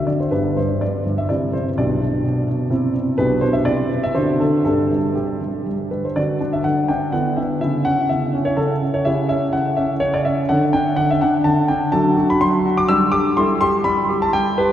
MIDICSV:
0, 0, Header, 1, 2, 480
1, 0, Start_track
1, 0, Key_signature, 1, "major"
1, 0, Tempo, 489396
1, 313, Time_signature, 3, 2, 24, 8
1, 1745, Tempo, 472813
1, 3665, Tempo, 497512
1, 6073, Key_signature, 2, "major"
1, 6545, Tempo, 481541
1, 14589, End_track
2, 0, Start_track
2, 0, Title_t, "Grand piano"
2, 0, Program_c, 0, 0
2, 0, Note_on_c, 0, 62, 30
2, 0, Note_on_c, 0, 66, 31
2, 66, Note_on_c, 0, 74, 49
2, 72, Note_on_c, 0, 50, 34
2, 190, Note_off_c, 0, 74, 0
2, 199, Note_on_c, 0, 72, 46
2, 279, Note_off_c, 0, 62, 0
2, 280, Note_off_c, 0, 66, 0
2, 306, Note_on_c, 0, 71, 58
2, 308, Note_off_c, 0, 50, 0
2, 310, Note_on_c, 0, 31, 36
2, 311, Note_on_c, 0, 62, 33
2, 311, Note_on_c, 0, 67, 32
2, 312, Note_on_c, 0, 43, 39
2, 317, Note_off_c, 0, 72, 0
2, 545, Note_off_c, 0, 43, 0
2, 547, Note_off_c, 0, 31, 0
2, 553, Note_off_c, 0, 71, 0
2, 555, Note_on_c, 0, 72, 49
2, 560, Note_on_c, 0, 43, 38
2, 790, Note_off_c, 0, 43, 0
2, 796, Note_off_c, 0, 72, 0
2, 796, Note_on_c, 0, 74, 49
2, 804, Note_on_c, 0, 43, 33
2, 1011, Note_off_c, 0, 74, 0
2, 1019, Note_off_c, 0, 43, 0
2, 1034, Note_on_c, 0, 43, 39
2, 1156, Note_on_c, 0, 76, 60
2, 1232, Note_off_c, 0, 62, 0
2, 1233, Note_off_c, 0, 67, 0
2, 1264, Note_on_c, 0, 74, 51
2, 1265, Note_off_c, 0, 43, 0
2, 1272, Note_on_c, 0, 64, 30
2, 1274, Note_off_c, 0, 76, 0
2, 1275, Note_on_c, 0, 48, 44
2, 1275, Note_on_c, 0, 67, 28
2, 1482, Note_off_c, 0, 74, 0
2, 1500, Note_off_c, 0, 48, 0
2, 1504, Note_on_c, 0, 72, 52
2, 1514, Note_on_c, 0, 48, 35
2, 1647, Note_off_c, 0, 72, 0
2, 1711, Note_off_c, 0, 64, 0
2, 1713, Note_off_c, 0, 67, 0
2, 1740, Note_off_c, 0, 48, 0
2, 1744, Note_on_c, 0, 74, 59
2, 1745, Note_on_c, 0, 35, 41
2, 1746, Note_on_c, 0, 67, 33
2, 1748, Note_on_c, 0, 47, 46
2, 1749, Note_on_c, 0, 62, 34
2, 1962, Note_off_c, 0, 47, 0
2, 1977, Note_off_c, 0, 35, 0
2, 1978, Note_on_c, 0, 47, 41
2, 2200, Note_off_c, 0, 47, 0
2, 2215, Note_on_c, 0, 47, 43
2, 2438, Note_off_c, 0, 47, 0
2, 2453, Note_on_c, 0, 47, 45
2, 2661, Note_off_c, 0, 67, 0
2, 2663, Note_off_c, 0, 62, 0
2, 2683, Note_on_c, 0, 48, 58
2, 2686, Note_on_c, 0, 60, 39
2, 2686, Note_on_c, 0, 64, 35
2, 2690, Note_off_c, 0, 47, 0
2, 2901, Note_off_c, 0, 74, 0
2, 2913, Note_off_c, 0, 48, 0
2, 2928, Note_on_c, 0, 48, 45
2, 3139, Note_off_c, 0, 60, 0
2, 3139, Note_off_c, 0, 64, 0
2, 3165, Note_on_c, 0, 71, 72
2, 3166, Note_off_c, 0, 48, 0
2, 3168, Note_on_c, 0, 62, 39
2, 3169, Note_on_c, 0, 47, 56
2, 3171, Note_on_c, 0, 35, 51
2, 3172, Note_on_c, 0, 67, 45
2, 3388, Note_off_c, 0, 71, 0
2, 3396, Note_off_c, 0, 47, 0
2, 3402, Note_on_c, 0, 72, 72
2, 3409, Note_off_c, 0, 35, 0
2, 3411, Note_on_c, 0, 47, 53
2, 3522, Note_on_c, 0, 76, 65
2, 3533, Note_off_c, 0, 72, 0
2, 3624, Note_off_c, 0, 62, 0
2, 3626, Note_off_c, 0, 67, 0
2, 3645, Note_on_c, 0, 74, 76
2, 3652, Note_off_c, 0, 47, 0
2, 3652, Note_on_c, 0, 48, 53
2, 3653, Note_on_c, 0, 64, 35
2, 3653, Note_on_c, 0, 67, 36
2, 3655, Note_off_c, 0, 76, 0
2, 3880, Note_off_c, 0, 48, 0
2, 3895, Note_on_c, 0, 48, 43
2, 4010, Note_off_c, 0, 74, 0
2, 4016, Note_on_c, 0, 76, 74
2, 4100, Note_off_c, 0, 64, 0
2, 4100, Note_off_c, 0, 67, 0
2, 4124, Note_on_c, 0, 72, 67
2, 4127, Note_on_c, 0, 62, 36
2, 4129, Note_off_c, 0, 48, 0
2, 4130, Note_on_c, 0, 66, 36
2, 4131, Note_on_c, 0, 50, 49
2, 4137, Note_off_c, 0, 76, 0
2, 4360, Note_off_c, 0, 50, 0
2, 4366, Note_on_c, 0, 69, 56
2, 4372, Note_off_c, 0, 72, 0
2, 4374, Note_on_c, 0, 50, 40
2, 4582, Note_off_c, 0, 62, 0
2, 4583, Note_off_c, 0, 66, 0
2, 4594, Note_off_c, 0, 69, 0
2, 4608, Note_on_c, 0, 69, 64
2, 4612, Note_off_c, 0, 50, 0
2, 4615, Note_on_c, 0, 43, 41
2, 4615, Note_on_c, 0, 67, 28
2, 4616, Note_on_c, 0, 55, 41
2, 4616, Note_on_c, 0, 62, 32
2, 4849, Note_off_c, 0, 55, 0
2, 4852, Note_off_c, 0, 43, 0
2, 4864, Note_on_c, 0, 55, 39
2, 4901, Note_off_c, 0, 69, 0
2, 5079, Note_off_c, 0, 67, 0
2, 5086, Note_off_c, 0, 55, 0
2, 5094, Note_on_c, 0, 67, 40
2, 5101, Note_on_c, 0, 55, 31
2, 5332, Note_off_c, 0, 55, 0
2, 5347, Note_on_c, 0, 55, 34
2, 5573, Note_off_c, 0, 55, 0
2, 5582, Note_off_c, 0, 67, 0
2, 5588, Note_on_c, 0, 55, 32
2, 5813, Note_off_c, 0, 55, 0
2, 5826, Note_on_c, 0, 71, 46
2, 5828, Note_on_c, 0, 55, 29
2, 5950, Note_off_c, 0, 71, 0
2, 5960, Note_on_c, 0, 72, 47
2, 6031, Note_off_c, 0, 62, 0
2, 6064, Note_off_c, 0, 55, 0
2, 6066, Note_on_c, 0, 74, 65
2, 6070, Note_on_c, 0, 66, 40
2, 6071, Note_on_c, 0, 50, 50
2, 6072, Note_on_c, 0, 62, 35
2, 6076, Note_off_c, 0, 72, 0
2, 6280, Note_off_c, 0, 74, 0
2, 6289, Note_off_c, 0, 62, 0
2, 6301, Note_off_c, 0, 50, 0
2, 6303, Note_on_c, 0, 62, 47
2, 6423, Note_on_c, 0, 76, 63
2, 6530, Note_on_c, 0, 78, 66
2, 6534, Note_off_c, 0, 62, 0
2, 6541, Note_on_c, 0, 50, 44
2, 6542, Note_off_c, 0, 76, 0
2, 6773, Note_on_c, 0, 79, 64
2, 6776, Note_off_c, 0, 50, 0
2, 6778, Note_off_c, 0, 78, 0
2, 6780, Note_on_c, 0, 62, 47
2, 6984, Note_off_c, 0, 66, 0
2, 7013, Note_on_c, 0, 78, 68
2, 7016, Note_off_c, 0, 62, 0
2, 7017, Note_on_c, 0, 50, 52
2, 7018, Note_on_c, 0, 64, 36
2, 7019, Note_off_c, 0, 79, 0
2, 7019, Note_on_c, 0, 59, 38
2, 7253, Note_off_c, 0, 50, 0
2, 7254, Note_on_c, 0, 76, 58
2, 7258, Note_off_c, 0, 78, 0
2, 7259, Note_on_c, 0, 62, 41
2, 7468, Note_off_c, 0, 59, 0
2, 7468, Note_off_c, 0, 64, 0
2, 7481, Note_off_c, 0, 76, 0
2, 7495, Note_off_c, 0, 62, 0
2, 7496, Note_on_c, 0, 76, 68
2, 7499, Note_on_c, 0, 64, 41
2, 7500, Note_on_c, 0, 49, 52
2, 7718, Note_off_c, 0, 76, 0
2, 7734, Note_on_c, 0, 78, 74
2, 7737, Note_off_c, 0, 49, 0
2, 7741, Note_on_c, 0, 61, 49
2, 7957, Note_off_c, 0, 78, 0
2, 7978, Note_off_c, 0, 61, 0
2, 7978, Note_on_c, 0, 76, 62
2, 7986, Note_on_c, 0, 49, 46
2, 8219, Note_on_c, 0, 61, 49
2, 8220, Note_off_c, 0, 49, 0
2, 8307, Note_off_c, 0, 76, 0
2, 8334, Note_on_c, 0, 73, 75
2, 8451, Note_on_c, 0, 69, 68
2, 8456, Note_off_c, 0, 61, 0
2, 8457, Note_on_c, 0, 49, 48
2, 8461, Note_off_c, 0, 73, 0
2, 8599, Note_off_c, 0, 69, 0
2, 8694, Note_off_c, 0, 49, 0
2, 8699, Note_on_c, 0, 61, 46
2, 8820, Note_on_c, 0, 73, 63
2, 8902, Note_off_c, 0, 64, 0
2, 8930, Note_on_c, 0, 76, 72
2, 8933, Note_off_c, 0, 61, 0
2, 8935, Note_on_c, 0, 49, 59
2, 8940, Note_on_c, 0, 64, 42
2, 8940, Note_on_c, 0, 67, 37
2, 8942, Note_off_c, 0, 73, 0
2, 9155, Note_off_c, 0, 76, 0
2, 9170, Note_off_c, 0, 49, 0
2, 9170, Note_on_c, 0, 76, 73
2, 9180, Note_on_c, 0, 61, 51
2, 9317, Note_off_c, 0, 76, 0
2, 9407, Note_on_c, 0, 78, 68
2, 9410, Note_on_c, 0, 49, 51
2, 9412, Note_off_c, 0, 61, 0
2, 9628, Note_off_c, 0, 78, 0
2, 9646, Note_on_c, 0, 76, 70
2, 9647, Note_off_c, 0, 49, 0
2, 9659, Note_on_c, 0, 61, 51
2, 9794, Note_off_c, 0, 76, 0
2, 9879, Note_on_c, 0, 73, 81
2, 9883, Note_on_c, 0, 49, 51
2, 9891, Note_off_c, 0, 61, 0
2, 10009, Note_off_c, 0, 73, 0
2, 10015, Note_on_c, 0, 74, 70
2, 10123, Note_off_c, 0, 49, 0
2, 10126, Note_on_c, 0, 76, 68
2, 10129, Note_on_c, 0, 61, 50
2, 10137, Note_off_c, 0, 74, 0
2, 10273, Note_off_c, 0, 76, 0
2, 10335, Note_off_c, 0, 64, 0
2, 10335, Note_off_c, 0, 67, 0
2, 10365, Note_off_c, 0, 61, 0
2, 10366, Note_on_c, 0, 78, 73
2, 10371, Note_on_c, 0, 62, 43
2, 10371, Note_on_c, 0, 69, 46
2, 10372, Note_on_c, 0, 50, 62
2, 10511, Note_off_c, 0, 78, 0
2, 10597, Note_off_c, 0, 62, 0
2, 10604, Note_off_c, 0, 50, 0
2, 10607, Note_on_c, 0, 79, 78
2, 10612, Note_on_c, 0, 62, 52
2, 10823, Note_off_c, 0, 79, 0
2, 10840, Note_on_c, 0, 78, 85
2, 10843, Note_off_c, 0, 62, 0
2, 10847, Note_on_c, 0, 50, 49
2, 10964, Note_off_c, 0, 78, 0
2, 10981, Note_on_c, 0, 76, 77
2, 11080, Note_off_c, 0, 50, 0
2, 11089, Note_on_c, 0, 78, 74
2, 11095, Note_off_c, 0, 76, 0
2, 11095, Note_on_c, 0, 62, 54
2, 11232, Note_off_c, 0, 78, 0
2, 11317, Note_on_c, 0, 81, 86
2, 11321, Note_on_c, 0, 50, 57
2, 11324, Note_off_c, 0, 62, 0
2, 11537, Note_off_c, 0, 81, 0
2, 11556, Note_off_c, 0, 50, 0
2, 11557, Note_on_c, 0, 79, 75
2, 11565, Note_on_c, 0, 62, 49
2, 11763, Note_off_c, 0, 69, 0
2, 11776, Note_off_c, 0, 79, 0
2, 11784, Note_off_c, 0, 62, 0
2, 11793, Note_on_c, 0, 81, 90
2, 11799, Note_on_c, 0, 54, 68
2, 11799, Note_on_c, 0, 62, 48
2, 11800, Note_on_c, 0, 69, 48
2, 12035, Note_off_c, 0, 54, 0
2, 12038, Note_on_c, 0, 66, 61
2, 12123, Note_off_c, 0, 81, 0
2, 12171, Note_on_c, 0, 83, 85
2, 12275, Note_off_c, 0, 66, 0
2, 12280, Note_on_c, 0, 84, 96
2, 12284, Note_on_c, 0, 54, 59
2, 12289, Note_off_c, 0, 83, 0
2, 12519, Note_off_c, 0, 54, 0
2, 12524, Note_on_c, 0, 66, 62
2, 12644, Note_off_c, 0, 84, 0
2, 12645, Note_on_c, 0, 86, 92
2, 12724, Note_off_c, 0, 62, 0
2, 12724, Note_off_c, 0, 69, 0
2, 12754, Note_on_c, 0, 88, 96
2, 12759, Note_off_c, 0, 66, 0
2, 12763, Note_on_c, 0, 55, 76
2, 12763, Note_on_c, 0, 62, 54
2, 12765, Note_on_c, 0, 67, 46
2, 12766, Note_off_c, 0, 86, 0
2, 12976, Note_off_c, 0, 67, 0
2, 12976, Note_off_c, 0, 88, 0
2, 12985, Note_on_c, 0, 86, 91
2, 12991, Note_on_c, 0, 67, 58
2, 12998, Note_off_c, 0, 55, 0
2, 13212, Note_off_c, 0, 62, 0
2, 13232, Note_off_c, 0, 67, 0
2, 13237, Note_off_c, 0, 86, 0
2, 13237, Note_on_c, 0, 84, 89
2, 13243, Note_on_c, 0, 55, 65
2, 13244, Note_on_c, 0, 64, 52
2, 13248, Note_on_c, 0, 69, 51
2, 13385, Note_off_c, 0, 84, 0
2, 13474, Note_on_c, 0, 84, 102
2, 13479, Note_off_c, 0, 55, 0
2, 13480, Note_on_c, 0, 67, 65
2, 13624, Note_off_c, 0, 84, 0
2, 13708, Note_on_c, 0, 83, 89
2, 13713, Note_on_c, 0, 55, 63
2, 13719, Note_off_c, 0, 67, 0
2, 13957, Note_on_c, 0, 67, 59
2, 13958, Note_off_c, 0, 55, 0
2, 14048, Note_off_c, 0, 83, 0
2, 14085, Note_on_c, 0, 81, 93
2, 14197, Note_on_c, 0, 79, 92
2, 14203, Note_off_c, 0, 67, 0
2, 14203, Note_on_c, 0, 55, 58
2, 14213, Note_off_c, 0, 81, 0
2, 14444, Note_on_c, 0, 71, 83
2, 14448, Note_off_c, 0, 55, 0
2, 14453, Note_off_c, 0, 79, 0
2, 14453, Note_on_c, 0, 67, 56
2, 14576, Note_off_c, 0, 71, 0
2, 14589, Note_off_c, 0, 64, 0
2, 14589, Note_off_c, 0, 67, 0
2, 14589, Note_off_c, 0, 69, 0
2, 14589, End_track
0, 0, End_of_file